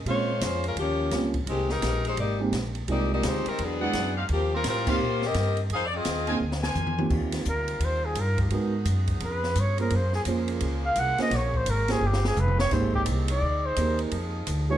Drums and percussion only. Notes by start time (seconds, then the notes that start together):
0.06 ride
0.41 snare, hi-hat pedal, ride
0.64 ride
0.77 ride
1.11 snare, hi-hat pedal, ride
1.34 kick, ride
1.47 ride
1.69 snare
1.82 snare, hi-hat pedal, ride
2.05 ride
2.17 ride
2.53 snare, hi-hat pedal, ride
2.75 ride
2.88 ride
3.23 snare, hi-hat pedal, ride
3.46 ride
3.58 ride
3.93 snare, hi-hat pedal, ride
4.29 ride
4.64 snare, hi-hat pedal, ride
4.87 kick, crash
5.22 snare
5.34 snare, hi-hat pedal, ride
5.57 ride
5.70 ride
6.05 snare, hi-hat pedal, ride
6.27 ride
6.52 snare
6.63 snare
6.75 hi-hat pedal, high tom
6.87 high tom
6.98 high tom
7.10 kick, crash
7.32 snare, ride
7.45 hi-hat pedal
7.68 ride
7.80 ride
8.15 hi-hat pedal, ride
8.38 kick, ride
8.50 ride
8.85 hi-hat pedal, ride
9.07 kick, ride
9.20 ride
9.43 snare
9.55 hi-hat pedal, ride
9.78 ride
9.90 ride
10.13 snare
10.25 hi-hat pedal, ride
10.48 ride
10.60 ride
10.95 hi-hat pedal, ride
11.18 snare, ride
11.31 snare, ride
11.54 kick
11.66 hi-hat pedal, ride
11.88 snare, ride
12.13 snare
12.25 snare
12.36 hi-hat pedal, mid tom
12.48 mid tom
12.59 snare
12.71 kick, snare, crash
12.94 kick
13.06 hi-hat pedal, ride
13.28 ride
13.76 hi-hat pedal, ride
13.99 ride
14.11 ride
14.47 hi-hat pedal, ride